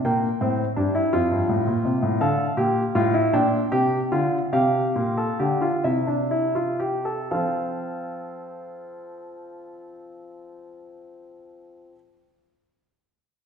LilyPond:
<<
  \new Staff \with { instrumentName = "Grand piano" } { \time 6/8 \key f \major \tempo 4. = 44 << { g''2. | f''4. g''4. | f''4. e''4. | <c' f' f''>2.~ |
<c' f' f''>2. | } \\ { bes8 c'8 d'16 e'16 f'4. | a'8 g'8 f'16 e'16 d'8 g'8 f'8 | g'8. a'16 g'16 f'16 e'16 d'16 e'16 f'16 g'16 a'16 | a'2.~ |
a'2. | } >> }
  \new Staff \with { instrumentName = "Grand piano" } { \clef bass \time 6/8 \key f \major bes,8 a,8 g,8 f,16 g,16 a,16 bes,16 c16 a,16 | d8 bes,8 a,8 bes,8 c8 d8 | c8 bes,8 d8 c4. | f2.~ |
f2. | }
>>